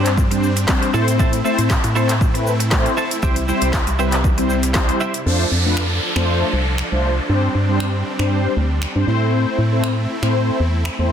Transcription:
Already playing: fm bass G2, analog polysynth G3 C4 D4 C5, supersaw synth G3 C4 D4, clean electric guitar D4
0.05 muted clean electric guitar stroke, clap, closed hi-hat, shaker
0.17 muted clean electric guitar stroke, kick, shaker
0.31 analog polysynth G3 C4 D4 C5, muted clean electric guitar stroke, closed hi-hat, shaker
0.43 shaker
0.56 muted clean electric guitar stroke, closed hi-hat, shaker
0.68 analog polysynth G3 C4 D4 C5, muted clean electric guitar stroke, kick, snare, clap, shaker
0.82 muted clean electric guitar stroke, closed hi-hat, shaker
0.94 fm bass A2, analog polysynth A3 C4 E4 C5, supersaw synth A3 E4, clean electric guitar E4 A4 C5, shaker
1.07 muted clean electric guitar stroke, closed hi-hat, shaker
1.19 clean electric guitar E4 A4 C5, kick, shaker
1.33 muted clean electric guitar stroke, closed hi-hat, shaker
1.44 analog polysynth A3 C4 E4 C5, clean electric guitar E4 A4 C5, shaker
1.58 fm bass A2, clean electric guitar E4 A4 C5, closed hi-hat, shaker
1.70 muted clean electric guitar stroke, kick, snare, clap, shaker
1.84 fm bass A2, muted clean electric guitar stroke, closed hi-hat, shaker
1.95 analog polysynth A3 C4 E4 C5, clean electric guitar E4 A4 C5, shaker
2.09 muted clean electric guitar stroke, clap, closed hi-hat, shaker
2.21 muted clean electric guitar stroke, kick, shaker
2.34 analog polysynth A3 C4 E4 B4, muted clean electric guitar stroke, closed hi-hat, shaker
2.47 shaker
2.60 muted clean electric guitar stroke, closed hi-hat, shaker
2.71 analog polysynth A3 C4 E4 C5, muted clean electric guitar stroke, kick, snare, clap, shaker
2.85 muted clean electric guitar stroke, closed hi-hat, shaker
2.97 clean electric guitar E4 A4 C5, shaker
3.11 muted clean electric guitar stroke, closed hi-hat, shaker
3.23 fm bass C2, supersaw synth C3 G3, analog polysynth G3 C4 E4 C5, clean electric guitar E4 G4 C5, kick, shaker
3.36 muted clean electric guitar stroke, closed hi-hat, shaker
3.48 analog polysynth G3 C4 E4 C5, clean electric guitar E4 G4 C5, shaker
3.61 fm bass C2, clean electric guitar E4 G4 C5, closed hi-hat, shaker
3.73 muted clean electric guitar stroke, kick, snare, clap, shaker
3.87 fm bass C2, muted clean electric guitar stroke, closed hi-hat, shaker
3.99 analog polysynth G3 C4 E4 B4, clean electric guitar E4 G4 C5, shaker
4.12 muted clean electric guitar stroke, clap, closed hi-hat, shaker
4.24 muted clean electric guitar stroke, kick, shaker
4.38 analog polysynth G3 C4 E4 C5, muted clean electric guitar stroke, closed hi-hat, shaker
4.50 shaker
4.63 muted clean electric guitar stroke, closed hi-hat, shaker
4.74 analog polysynth G3 C4 E4 C5, muted clean electric guitar stroke, kick, snare, clap, shaker
4.89 muted clean electric guitar stroke, closed hi-hat, shaker
5.00 clean electric guitar E4 G4 C5, shaker
5.14 muted clean electric guitar stroke, closed hi-hat, shaker
5.26 fm bass F2, supersaw synth F3 D4 A4, analog polysynth A3 D4 F4 C5, downlifter
5.51 fm bass F2
5.65 analog polysynth A3 D4 F4 B4
5.77 finger snap
6.02 analog polysynth F4 C5
6.16 fm bass F2, analog polysynth A3 D4 F4 C5, finger snap
6.53 fm bass C2
6.78 finger snap
6.92 fm bass C2, analog polysynth A3 D4 F4 C5
7.29 fm bass G2, analog polysynth G3 C4 D4 C5, supersaw synth G3 C4
7.55 fm bass G2
7.68 analog polysynth G3 C4 D4 C5
7.80 finger snap
8.06 analog polysynth D4 C5
8.19 fm bass G2, analog polysynth G3 C4 D4 C5, finger snap
8.57 fm bass D2
8.82 finger snap
8.95 fm bass G2, analog polysynth G3 C4 D4 C5
9.07 fm bass A2, analog polysynth A3 C4 E4 C5, supersaw synth A3 C4 E4
9.58 fm bass A2
9.72 analog polysynth A3 C4 E4 C5
9.84 finger snap
10.09 analog polysynth E4 C5
10.23 fm bass A2, analog polysynth A3 C4 E4 C5, finger snap
10.60 fm bass E2
10.85 finger snap
10.99 fm bass E2, analog polysynth A3 C4 E4 C5

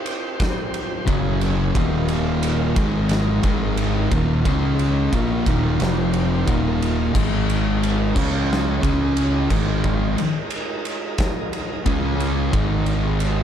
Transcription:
Already playing: tonewheel organ C4 G4 C5
0.06 ride
0.40 kick, snare, ride
0.74 ride
1.06 fingered electric bass F#1, distorted electric guitar F#2 C#3 F#3, tonewheel organ F#3 C#4 G#4, kick, ride
1.41 ride
1.75 fingered electric bass D#1, distorted electric guitar D#2 A#2 D#3, tonewheel organ A#3 F4, kick, ride
1.79 tonewheel organ D#3
2.08 ride
2.43 ride
2.76 fingered electric bass G#1, distorted electric guitar G#2 D#3 G#3, tonewheel organ G#3 D#4 A#4, kick, ride
3.09 snare, ride
3.43 fingered electric bass G#1, distorted electric guitar G#2 D#3 G#3, kick, ride
3.77 ride
4.12 fingered electric bass D#1, distorted electric guitar D#2 A#2 D#3, tonewheel organ D#3 F4, kick, ride
4.16 tonewheel organ A#3
4.45 fingered electric bass C#2, distorted electric guitar C#3 G#3 C#4, tonewheel organ C#3 G#3 D#4, kick, ride
4.79 ride
5.12 fingered electric bass A#1, distorted electric guitar A#2 F3 A#3, tonewheel organ D#3 A#3 F4, kick, ride
5.46 fingered electric bass D#1, distorted electric guitar D#2 A#2 D#3, kick, ride
5.80 fingered electric bass F1, distorted electric guitar F2 C3 F3, tonewheel organ F3 C4 G4, snare, ride
6.13 ride
6.47 fingered electric bass D#1, distorted electric guitar D#2 A#2 D#3, tonewheel organ D#3 A#3 F4, kick, ride
6.82 ride
7.14 fingered electric bass G#1, distorted electric guitar G#2 D#3 G#3, tonewheel organ G#3 D#4 A#4, kick, crash
7.50 ride
7.83 ride
8.14 fingered electric bass C#2, distorted electric guitar C#3 G#3 C#4, tonewheel organ C#4 G#4 D#5, kick, crash
8.53 snare
8.81 fingered electric bass C#2, distorted electric guitar C#3 G#3 C#4, kick, ride
9.17 ride
9.49 fingered electric bass G#1, distorted electric guitar G#2 D#3 G#3, tonewheel organ G#3 D#4 A#4, kick, crash
9.84 kick
10.18 ride
10.50 ride
10.85 ride
11.18 kick, snare, ride
11.53 ride
11.85 fingered electric bass C#2, distorted electric guitar C#3 G#3 C#4, tonewheel organ C#4 G#4 D#5, kick, ride
12.20 ride
12.52 fingered electric bass G#1, distorted electric guitar G#2 D#3 G#3, kick, ride
12.57 tonewheel organ G#3 D#4 A#4
12.86 ride
13.20 ride

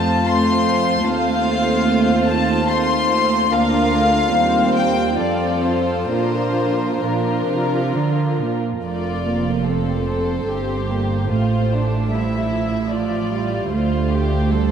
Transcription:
Already playing: cello section F2, viola section A3 C4, violin section F4 C5 A5
0.26 viola section A3 C4, violin section F4 C5 C6
1.06 cello section D#2, viola section A3 C4, violin section F4 C5 F5
2.28 violin section A5
2.69 viola section A3 C4, violin section F4 C5 C6
3.51 cello section D2, viola section A#3 D4, violin section F4 A#4 F5
3.91 viola section A3
4.33 cello section D#2, viola section G3 C4, violin section C4 C5
4.75 violin section G5
5.18 cello section F2, viola section F3 C4, violin section F4 A4 D5
5.63 violin section C5
6.09 cello section A#2, viola section F3 D4, violin section F4 A#4 C5
7.01 cello section A#2, viola section F3 D4, violin section F4 A#4
7.49 cello section C3
7.95 cello section D3
8.40 cello section A#2
8.85 double bass section F1, cello section F2, viola section A3, violin section F4 D5
9.26 viola section A#3
9.66 viola section C4, violin section A4 C5
10.07 violin section A4
10.48 double bass section G1, cello section G2, viola section C4, violin section G4
10.89 viola section A#3
11.29 double bass section A1, cello section A2, viola section A3, violin section F4 C5
11.73 violin section D4
12.10 viola section G3, violin section E4 E5
12.51 viola section F3
12.90 viola section F3, violin section F4 D5
13.32 viola section G3
13.71 cello section D2, double bass section D2, viola section A3, violin section F4 C5
14.11 violin section G4
14.51 viola section G3, violin section A4

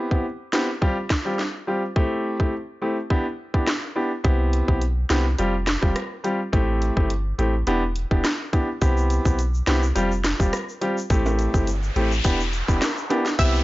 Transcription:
0.11 grand piano B3 C4 E4 G4, kick
0.53 grand piano B3 C4 E4 G4, cross-stick, snare
0.81 grand piano G3 C4 F4 G4, kick
1.10 kick, cross-stick, snare
1.25 grand piano G3 C4 F4 G4
1.39 snare
1.67 grand piano G3 C4 F4 G4
1.96 grand piano A3 C4 E4 G4, kick
2.40 grand piano A3 C4 E4 G4, kick
2.82 grand piano A3 C4 E4 G4
3.10 grand piano B3 D4 E4 G4, kick
3.54 grand piano B3 D4 E4 G4, kick
3.67 cross-stick, snare
3.95 grand piano B3 D4 E4 G4
4.24 sub bass C2, grand piano B3 C4 E4 G4, kick, closed hi-hat
4.53 closed hi-hat
4.68 sub bass B1, grand piano B3 C4 E4 G4, kick
4.82 closed hi-hat
5.10 sub bass C2, grand piano B3 C4 E4 G4, cross-stick, snare, closed hi-hat
5.38 sub bass F1, grand piano G3 C4 F4 G4, closed hi-hat
5.67 cross-stick, snare, closed hi-hat
5.82 sub bass F1, grand piano G3 C4 F4 G4, kick
5.96 cross-stick, closed hi-hat
6.24 grand piano G3 C4 F4 G4, closed hi-hat
6.52 sub bass A1, grand piano A3 C4 E4 G4, kick, closed hi-hat
6.82 closed hi-hat
6.96 sub bass G1, grand piano A3 C4 E4 G4, kick
7.10 closed hi-hat
7.38 sub bass A1, grand piano A3 C4 E4 G4, closed hi-hat
7.67 sub bass E1, grand piano B3 D4 E4 G4, closed hi-hat
7.96 closed hi-hat
8.11 sub bass E1, grand piano B3 D4 E4 G4, kick
8.24 cross-stick, snare, closed hi-hat
8.53 grand piano B3 D4 E4 G4, kick, closed hi-hat
8.81 sub bass C2, grand piano B3 C4 E4 G4, kick, closed hi-hat, shaker
8.97 shaker
9.10 closed hi-hat, shaker
9.25 sub bass B1, grand piano B3 C4 E4 G4, kick, shaker
9.39 closed hi-hat, shaker
9.54 shaker
9.67 sub bass C2, grand piano B3 C4 E4 G4, cross-stick, snare, closed hi-hat
9.83 shaker
9.95 sub bass F1, grand piano G3 C4 F4 G4, closed hi-hat, shaker
10.12 shaker
10.24 cross-stick, snare, closed hi-hat, shaker
10.39 sub bass F1, grand piano G3 C4 F4 G4, kick, shaker
10.53 cross-stick, closed hi-hat, shaker
10.69 shaker
10.81 grand piano G3 C4 F4 G4, closed hi-hat
10.98 shaker
11.10 sub bass A1, grand piano A3 C4 E4 G4, kick, closed hi-hat, noise sweep, shaker
11.26 high timbale, shaker
11.39 closed hi-hat, shaker
11.54 sub bass G1, grand piano A3 C4 E4 G4, kick, shaker
11.67 closed hi-hat, shaker
11.83 shaker
11.96 sub bass A1, grand piano A3 C4 E4 G4, closed hi-hat
12.12 shaker
12.24 sub bass E1, grand piano B3 D4 E4 G4, kick, closed hi-hat, shaker
12.40 shaker
12.53 closed hi-hat, shaker
12.68 sub bass E1, grand piano B3 D4 E4 G4, kick, shaker
12.82 cross-stick, snare, closed hi-hat, high timbale, shaker
12.97 shaker
13.10 grand piano B3 D4 E4 G4, closed hi-hat, high timbale
13.26 snare, shaker
13.39 sub bass C2, grand piano B3 C4 E4 G4, synth pluck E5, kick, closed hi-hat, downlifter, shaker
13.55 shaker

